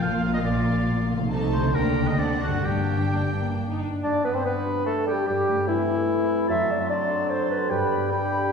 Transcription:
Already playing: harp A#2 F3 F4 A#4, violin section F4
0.00 double bass section A#1, cello section A#2, viola section A#3, violin section F5, oboe F5
0.34 oboe D#5
0.45 oboe D5
1.12 harp C3
1.16 harp A3
1.21 harp D#4
1.26 harp A4
1.30 double bass section C2, cello section C3, viola section A3, violin section D#4 A5
1.53 harp D3, oboe C5
1.60 harp A#3
1.64 harp D4
1.69 violin section D4, harp G4
1.74 double bass section D2, cello section D3, viola section A#3, oboe A#4, violin section G5
2.00 harp D3
2.05 harp C4, oboe D#5
2.10 harp D4
2.14 harp F#4, violin section F#5
2.18 double bass section D2, cello section D3, viola section C4, violin section D4, oboe D5
2.42 oboe F#4
2.47 harp G2
2.52 harp A#3
2.56 harp D4
2.61 double bass section G1, harp G4, violin section G5
2.65 cello section G2, viola section A#3, violin section D4, oboe G4
3.13 viola section D4
3.36 viola section A#3
3.70 viola section D#4
3.82 viola section D4
4.03 harp G2, bassoon D4, flute section D5, clarinet D5, oboe D5
4.24 harp B3, bassoon B3, flute section B4, clarinet B4, oboe B4
4.34 bassoon C4, flute section C5, oboe C5, clarinet C5
4.45 bassoon B3, harp D4, flute section B4, clarinet B4, oboe B4
4.66 harp G4
4.86 bassoon A3, oboe A4, flute section A4, clarinet A4
5.06 bassoon G3, flute section G4, oboe G4, harp G4, clarinet G4
5.27 harp G2, bassoon G3, flute section G4, oboe G4, clarinet G4
5.49 harp A3
5.67 bassoon E3, harp C4, oboe E4, flute section E4, clarinet E4
5.88 harp A4
6.08 harp C4
6.48 harp F#2, bassoon F#3, clarinet E5, oboe A5, flute section C6
6.70 harp C4, clarinet D5
6.80 clarinet E5
6.90 harp D4, clarinet D5, oboe A5, flute section C6
7.09 harp A4
7.29 harp C5, clarinet C5, oboe A5, flute section C6
7.49 harp A4, clarinet B4
7.69 harp G2, bassoon G3, clarinet B4, oboe G5, flute section B5
7.90 harp B3
8.10 harp D4, clarinet G4, oboe G5, flute section B5
8.30 harp G4

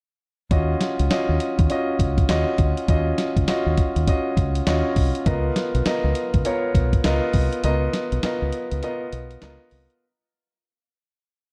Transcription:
0.51 fingered electric bass D#2, grand piano C#4 F4 F#4 D#5, kick, closed hi-hat
0.81 snare, closed hi-hat
0.99 fingered electric bass C#2, closed hi-hat
1.10 grand piano C#4 F4 F#4 D#5, snare, clap, closed hi-hat
1.29 fingered electric bass D#2
1.40 closed hi-hat
1.59 fingered electric bass D#2, kick, closed hi-hat
1.70 grand piano C#4 F4 F#4 D#5, closed hi-hat
1.99 fingered electric bass C#2, kick, closed hi-hat
2.18 kick, closed hi-hat
2.29 fingered electric bass D#2, grand piano C#4 F4 F#4 D#5, snare, clap, closed hi-hat
2.58 fingered electric bass D2, kick, closed hi-hat
2.77 closed hi-hat
2.88 fingered electric bass D#2, grand piano C#4 F4 F#4 D#5, kick, closed hi-hat
3.18 snare, closed hi-hat
3.37 fingered electric bass C#2, kick, closed hi-hat
3.48 grand piano C#4 F4 F#4 D#5, muted fingered electric bass stroke, snare, clap, closed hi-hat
3.66 fingered electric bass D#2
3.77 kick, closed hi-hat
3.96 fingered electric bass D#2, closed hi-hat
4.07 grand piano C#4 F4 F#4 D#5, kick, closed hi-hat
4.37 fingered electric bass C#2, kick, closed hi-hat
4.55 closed hi-hat
4.67 fingered electric bass D#2, grand piano C#4 F4 F#4 D#5, snare, clap, closed hi-hat
4.96 fingered electric bass C2, kick, open hi-hat
5.15 closed hi-hat
5.26 fingered electric bass C#2, grand piano B3 F4 A#4 D#5, kick, closed hi-hat
5.56 snare, closed hi-hat
5.74 fingered electric bass B1, closed hi-hat
5.85 grand piano B3 F4 A#4 D#5, snare, clap, closed hi-hat
6.04 fingered electric bass C#2
6.15 closed hi-hat
6.34 fingered electric bass C#2, kick, closed hi-hat
6.45 grand piano B3 F4 A#4 C#5, closed hi-hat
6.75 fingered electric bass B1, kick, closed hi-hat
6.93 kick, closed hi-hat
7.04 fingered electric bass C#2, grand piano B3 F4 A#4 D#5, snare, clap, closed hi-hat
7.33 fingered electric bass C2, kick, open hi-hat
7.53 closed hi-hat
7.64 fingered electric bass C#2, grand piano B3 F4 A#4 D#5, closed hi-hat
7.93 snare, closed hi-hat
8.12 fingered electric bass B1, closed hi-hat
8.23 grand piano B3 F4 A#4 D#5, muted fingered electric bass stroke, snare, clap, closed hi-hat
8.42 fingered electric bass C#2
8.53 closed hi-hat
8.71 fingered electric bass C#2, closed hi-hat
8.83 grand piano B3 F4 A#4 D#5, closed hi-hat
9.13 fingered electric bass B1, closed hi-hat
9.31 closed hi-hat
9.42 fingered electric bass C#2, grand piano B3 F4 A#4 D#5, snare, clap, closed hi-hat
9.71 fingered electric bass C2, open hi-hat
9.90 closed hi-hat

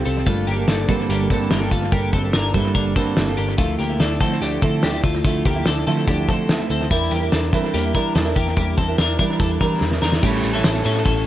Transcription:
Already playing: steel-string acoustic guitar C4 F4 G4
0.05 picked electric bass C2, clean electric guitar C4 A4, closed hi-hat
0.26 picked electric bass G1, steel-string acoustic guitar G3 A#3 D4 A4, clean electric guitar A3 F4, kick, closed hi-hat
0.47 picked electric bass G1, clean electric guitar A#3 G4, closed hi-hat
0.57 steel-string acoustic guitar G3 A#3 D4 A4
0.68 picked electric bass G1, clean electric guitar D4 A4, snare, closed hi-hat
0.88 steel-string acoustic guitar G2 D3 G3 A#3 D4 A4, picked electric bass G2, clean electric guitar C4 A4, kick, closed hi-hat
1.09 picked electric bass G1, clean electric guitar A#3 G4, closed hi-hat
1.30 steel-string acoustic guitar G2 D3 G3 A#3 D4 A4, picked electric bass G2, clean electric guitar C4 A4, kick, closed hi-hat
1.51 picked electric bass G1, clean electric guitar A#3 G4, snare, closed hi-hat
1.60 steel-string acoustic guitar G3 A#3 D4 A4
1.71 picked electric bass G1, clean electric guitar A3 F4, kick, closed hi-hat
1.91 picked electric bass G1, steel-string acoustic guitar G3 A#3 D4 A4, clean electric guitar A#3 G4, kick, closed hi-hat
2.13 picked electric bass G1, clean electric guitar C4 A4, kick, closed hi-hat
2.23 steel-string acoustic guitar G3 A#3 D4 A4
2.33 picked electric bass G1, clean electric guitar D4 A#4, snare, closed hi-hat
2.53 steel-string acoustic guitar G2 D3 G3 A#3 D4 A4, picked electric bass G2, clean electric guitar E4 C5, kick, closed hi-hat
2.75 picked electric bass G1, clean electric guitar D4 A#4, kick, closed hi-hat
2.95 steel-string acoustic guitar G2 D3 G3 A#3 D4 A4, picked electric bass G2, clean electric guitar C4 A4, kick, closed hi-hat
3.17 picked electric bass G1, snare, closed hi-hat
3.27 steel-string acoustic guitar G3 A#3 D4 A4
3.37 picked electric bass G1, clean electric guitar A#3 G4, closed hi-hat
3.58 picked electric bass D2, steel-string acoustic guitar D3 F3 A3 E4, clean electric guitar A3 F4, kick, closed hi-hat
3.79 picked electric bass D2, clean electric guitar A#3 G4, closed hi-hat
3.89 steel-string acoustic guitar F3 A3 E4
3.99 picked electric bass D2, clean electric guitar D4 A4, snare, closed hi-hat
4.20 steel-string acoustic guitar D3 F3 A3 E4, picked electric bass D3, clean electric guitar C4 A4, kick, closed hi-hat
4.41 picked electric bass D2, clean electric guitar D4 G4, closed hi-hat
4.62 steel-string acoustic guitar D3 F3 A3 E4, picked electric bass D3, clean electric guitar C4 A4, kick, closed hi-hat
4.83 picked electric bass D2, clean electric guitar D4 G4, snare, closed hi-hat
4.93 steel-string acoustic guitar F3 A3 E4
5.04 picked electric bass D2, clean electric guitar A3 F4, kick, closed hi-hat
5.24 picked electric bass D2, steel-string acoustic guitar D3 F3 A3 E4, clean electric guitar A3 F4, kick, closed hi-hat
5.45 picked electric bass D2, clean electric guitar A#3 G4, kick, closed hi-hat
5.55 steel-string acoustic guitar F3 A3 E4
5.66 picked electric bass D2, clean electric guitar D4 A4, snare, closed hi-hat
5.86 steel-string acoustic guitar D3 F3 A3 E4, picked electric bass D3, clean electric guitar C4 A4, closed hi-hat
6.08 picked electric bass D2, clean electric guitar D4 G4, kick, closed hi-hat
6.28 steel-string acoustic guitar D3 F3 A3 E4, picked electric bass D3, clean electric guitar C4 A4, kick, closed hi-hat
6.49 picked electric bass D2, snare, closed hi-hat
6.58 steel-string acoustic guitar F3 A3 E4
6.70 picked electric bass D2, clean electric guitar C4 A4, closed hi-hat
6.90 picked electric bass E2, steel-string acoustic guitar G3 D4 E4 A#4, clean electric guitar G3 E4, kick, closed hi-hat
7.11 picked electric bass E2, clean electric guitar A#3 G4, closed hi-hat
7.20 steel-string acoustic guitar D4 E4 A#4
7.32 picked electric bass E2, clean electric guitar D4 A4, snare, closed hi-hat
7.52 steel-string acoustic guitar E3 G3 D4 E4 A#4, picked electric bass E3, clean electric guitar C4 A4, kick, closed hi-hat
7.74 picked electric bass E2, clean electric guitar A#3 G4, closed hi-hat
7.94 steel-string acoustic guitar E3 G3 D4 E4 A#4, picked electric bass E3, clean electric guitar D4 A#4, kick, closed hi-hat
8.15 picked electric bass E2, clean electric guitar D4 A4, snare, closed hi-hat
8.24 steel-string acoustic guitar D4 E4 A#4
8.36 picked electric bass E2, clean electric guitar A#3 G4, kick, closed hi-hat
8.56 picked electric bass E2, steel-string acoustic guitar G3 D4 E4 A#4, clean electric guitar A#3 G4, kick, closed hi-hat
8.78 picked electric bass E2, clean electric guitar C4 A4, kick, closed hi-hat
8.88 steel-string acoustic guitar D4 E4 A#4
8.98 picked electric bass E2, clean electric guitar D4 A#4, snare, closed hi-hat
9.19 steel-string acoustic guitar E3 G3 D4 E4 A#4, picked electric bass E3, clean electric guitar D4 A#4, kick, closed hi-hat
9.40 picked electric bass E2, clean electric guitar D4 A4, kick, closed hi-hat
9.61 steel-string acoustic guitar E3 G3 D4 E4 A#4, picked electric bass E3, clean electric guitar D4 A#4, kick, closed hi-hat
9.81 picked electric bass E2, snare
9.92 steel-string acoustic guitar D4 E4 A#4, snare
10.02 picked electric bass E2, clean electric guitar D4 A#4, snare
10.12 snare
10.22 picked electric bass A1, steel-string acoustic guitar A2 E3 G3 C#4 E4 A4, clean electric guitar C#4 G4, kick, crash, tambourine
10.43 picked electric bass A1, ride, tambourine
10.53 steel-string acoustic guitar G3 C#4 E4 A4, clean electric guitar C#4 A4
10.64 picked electric bass A1, snare, ride, tambourine
10.73 steel-string acoustic guitar G3 C#4 E4 A4
10.85 picked electric bass A2, clean electric guitar C#4 A4, ride, tambourine
11.05 picked electric bass A1, clean electric guitar C#4 A4, kick, ride

